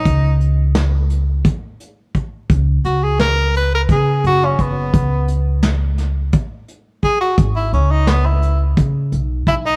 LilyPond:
<<
  \new Staff \with { instrumentName = "Tenor saxophone" } { \time 7/8 \key cis \dorian \tempo 4 = 86 dis'8 r2. | r8 fis'16 gis'16 ais'8 b'16 ais'16 gis'8 fis'16 cis'16 b8~ | b8 r2 r8 gis'16 fis'16~ | fis'16 e'16 cis'16 dis'16 b16 e'8 r4 r16 e'16 dis'16 | }
  \new Staff \with { instrumentName = "Upright bass" } { \clef bass \time 7/8 \key cis \dorian cis,2 r4. | cis,8 cis,4. cis8 fis,,8 fis,,8 | cis,2 r4. | gis,,8 cis,4. cis8 b,,8 b,,8 | }
  \new DrumStaff \with { instrumentName = "Drums" } \drummode { \time 7/8 <hh bd>8 hh8 <hh sn>8 hh8 <hh bd>8 hh8 <hh bd>8 | <hh bd>8 hh8 <hh sn>8 hh8 <hh bd>8 hh8 <hh bd>8 | <hh bd>8 hh8 <hh sn>8 <hh sn>8 <hh bd>8 hh8 <hh bd>8 | <hh bd>8 hh8 <hh sn>8 hh8 <hh bd>8 hh8 <hh bd>8 | }
>>